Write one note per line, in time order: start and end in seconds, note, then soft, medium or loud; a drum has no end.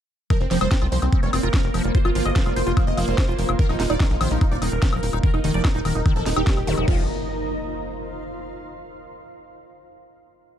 0.30 0.39 F3 medium
0.30 6.89 A#3 medium
0.30 4.90 F4 medium
0.30 0.36 A#4 loud
0.30 6.89 A#4 medium
0.30 kick loud
0.30 closed hi-hat medium
0.30 high woodblock soft
0.41 0.47 F1 medium
0.41 0.46 C4 medium
0.41 closed hi-hat soft
0.46 4.21 C5 loud
0.51 0.58 F1 loud
0.51 0.59 F3 loud
0.51 0.56 C4 medium
0.51 snare medium
0.51 open hi-hat loud
0.61 0.68 F1 medium
0.61 0.69 G3 medium
0.61 0.66 C5 medium
0.61 closed hi-hat medium
0.61 high woodblock medium
0.71 0.77 C4 medium
0.71 0.75 F4 loud
0.71 kick loud
0.71 snare loud
0.71 closed hi-hat medium
0.82 0.88 C2 medium
0.82 0.87 C4 medium
0.82 0.87 F4 loud
0.82 closed hi-hat soft
0.82 high woodblock soft
0.92 0.99 C2 loud
0.92 1.00 F3 medium
0.92 0.97 C5 medium
0.92 open hi-hat loud
1.02 1.09 C2 loud
1.02 1.08 C4 medium
1.02 4.45 F5 medium
1.02 closed hi-hat medium
1.02 high woodblock soft
1.12 1.21 F3 loud
1.12 1.18 C4 medium
1.12 kick loud
1.12 closed hi-hat medium
1.23 1.29 F1 medium
1.23 1.31 G3 medium
1.23 1.40 C4 medium
1.23 1.28 C#5 medium
1.23 closed hi-hat soft
1.33 1.40 F1 loud
1.33 1.38 C4 medium
1.33 1.36 F4 loud
1.33 open hi-hat loud
1.33 high woodblock medium
1.43 1.50 F1 medium
1.43 1.49 F4 loud
1.43 1.86 A#4 loud
1.43 closed hi-hat medium
1.54 1.62 F3 medium
1.54 kick loud
1.54 snare loud
1.54 closed hi-hat medium
1.54 high woodblock soft
1.64 1.71 F1 medium
1.64 closed hi-hat soft
1.74 1.81 F1 loud
1.74 1.82 F3 loud
1.74 open hi-hat medium
1.74 high woodblock soft
1.78 4.12 C6 medium
1.84 1.91 F1 medium
1.84 1.93 G3 medium
1.84 closed hi-hat medium
1.95 1.98 F4 loud
1.95 2.00 C5 loud
1.95 kick loud
1.95 closed hi-hat medium
2.05 2.12 G1 medium
2.05 2.10 F4 medium
2.05 2.11 F4 loud
2.05 closed hi-hat soft
2.05 high woodblock medium
2.15 2.22 G1 loud
2.15 2.24 F3 medium
2.15 2.21 F4 medium
2.15 open hi-hat loud
2.25 2.32 G1 medium
2.25 2.32 A#3 medium
2.25 2.31 D#5 medium
2.25 closed hi-hat medium
2.25 high woodblock soft
2.36 2.44 F3 loud
2.36 2.42 A#3 medium
2.36 2.41 F4 medium
2.36 kick loud
2.36 snare loud
2.36 closed hi-hat medium
2.46 2.53 F1 medium
2.46 2.54 G3 medium
2.46 2.51 F4 medium
2.46 closed hi-hat soft
2.46 high woodblock soft
2.56 2.63 F1 loud
2.56 2.60 F4 loud
2.56 2.62 C5 medium
2.56 open hi-hat loud
2.67 2.73 F1 loud
2.67 2.72 F4 loud
2.67 2.72 F4 medium
2.67 closed hi-hat medium
2.77 2.85 F3 medium
2.77 2.82 F4 medium
2.77 kick loud
2.77 closed hi-hat medium
2.77 high woodblock medium
2.87 2.94 F1 medium
2.87 2.93 D#5 medium
2.87 closed hi-hat soft
2.97 3.04 F1 loud
2.97 3.06 F3 loud
2.97 3.03 F4 medium
2.97 open hi-hat loud
2.97 high woodblock soft
3.08 3.14 F1 loud
3.08 3.16 G3 medium
3.08 3.51 C5 loud
3.18 3.21 F4 loud
3.18 kick loud
3.18 snare loud
3.18 closed hi-hat medium
3.18 high woodblock soft
3.28 3.35 F1 medium
3.28 3.34 F4 loud
3.28 closed hi-hat soft
3.38 3.45 F1 loud
3.38 3.47 F3 medium
3.38 open hi-hat loud
3.49 3.55 F1 loud
3.49 closed hi-hat medium
3.49 high woodblock medium
3.59 3.67 D#3 loud
3.59 6.88 D#4 medium
3.59 3.64 A#4 loud
3.59 kick loud
3.59 closed hi-hat medium
3.69 3.76 D#1 medium
3.69 3.78 F3 medium
3.69 3.75 D#4 medium
3.69 closed hi-hat soft
3.69 high woodblock soft
3.76 3.86 D#1 loud
3.76 3.83 D#4 loud
3.76 3.85 D#4 medium
3.76 6.88 A#4 medium
3.76 snare medium
3.76 open hi-hat loud
3.90 3.97 D#1 medium
3.90 3.95 D#4 loud
3.90 3.95 D5 medium
3.90 closed hi-hat medium
3.90 high woodblock soft
4.00 4.08 D#3 medium
4.00 4.06 D#4 medium
4.00 kick loud
4.00 snare loud
4.00 closed hi-hat medium
4.10 4.17 A#1 medium
4.10 4.16 D#4 medium
4.10 closed hi-hat soft
4.21 4.27 A#1 loud
4.21 4.29 D#3 loud
4.21 4.26 C5 medium
4.21 open hi-hat loud
4.21 high woodblock medium
4.31 4.38 A#1 medium
4.31 4.39 F3 medium
4.31 4.36 D#4 medium
4.31 closed hi-hat medium
4.41 4.45 D#4 loud
4.41 4.47 D#4 medium
4.41 kick loud
4.41 closed hi-hat medium
4.41 high woodblock soft
4.52 4.58 D#1 medium
4.52 4.57 D#4 loud
4.52 4.57 D5 medium
4.52 closed hi-hat soft
4.57 6.88 D#5 medium
4.62 4.68 D#1 loud
4.62 4.70 D#3 medium
4.62 4.67 D#4 medium
4.62 open hi-hat loud
4.62 high woodblock soft
4.72 4.79 D#1 medium
4.72 5.15 A#4 loud
4.72 closed hi-hat medium
4.82 4.91 D#3 loud
4.82 kick loud
4.82 snare loud
4.82 closed hi-hat medium
4.93 4.99 D#1 medium
4.93 5.01 F3 medium
4.93 closed hi-hat soft
4.93 high woodblock medium
5.03 5.10 D#1 loud
5.03 5.06 D#4 loud
5.03 open hi-hat loud
5.07 6.88 A#5 medium
5.13 5.20 D#1 medium
5.13 5.19 D#4 loud
5.13 closed hi-hat medium
5.13 high woodblock soft
5.23 5.32 D#3 medium
5.23 5.29 A#4 loud
5.23 kick loud
5.23 closed hi-hat soft
5.34 5.40 F1 medium
5.34 5.39 D#4 medium
5.34 closed hi-hat soft
5.34 high woodblock soft
5.44 5.51 F1 loud
5.44 5.52 D#3 loud
5.44 5.49 D#4 medium
5.44 open hi-hat loud
5.54 5.61 F1 medium
5.54 5.63 F3 medium
5.54 5.60 D5 medium
5.54 closed hi-hat medium
5.65 5.70 D#4 medium
5.65 5.68 D#4 loud
5.65 kick loud
5.65 snare loud
5.65 closed hi-hat soft
5.65 high woodblock medium
5.75 5.81 D#1 medium
5.75 5.80 D#4 medium
5.75 5.80 D#4 loud
5.75 closed hi-hat soft
5.85 5.92 D#1 loud
5.85 5.93 D#3 medium
5.85 5.90 A#4 medium
5.85 open hi-hat loud
5.85 high woodblock soft
5.95 6.02 D#1 loud
5.95 6.01 D#4 medium
5.95 closed hi-hat medium
6.06 6.14 D#3 loud
6.06 6.11 D#4 medium
6.06 kick loud
6.06 closed hi-hat medium
6.06 high woodblock soft
6.16 6.23 D#1 medium
6.16 6.24 F3 medium
6.16 6.21 A4 medium
6.16 closed hi-hat soft
6.26 6.33 D#1 loud
6.26 6.30 D#4 loud
6.26 6.32 D#4 medium
6.26 snare medium
6.26 open hi-hat loud
6.36 6.43 D#1 loud
6.36 6.42 D#4 loud
6.36 6.80 G4 loud
6.36 closed hi-hat medium
6.36 high woodblock medium
6.47 6.55 D#3 medium
6.47 kick loud
6.47 snare loud
6.47 closed hi-hat medium
6.57 6.64 D#1 medium
6.57 closed hi-hat soft
6.57 high woodblock soft
6.67 6.74 D#1 loud
6.67 6.76 D#3 loud
6.67 open hi-hat loud
6.67 zap medium
6.78 6.84 D#1 medium
6.78 6.86 F3 medium
6.78 closed hi-hat soft
6.78 high woodblock soft
6.88 7.07 F1 loud
6.88 7.03 F4 loud
6.88 8.48 F4 medium
6.88 kick loud
6.88 crash medium
6.88 impact medium
6.94 8.48 C5 medium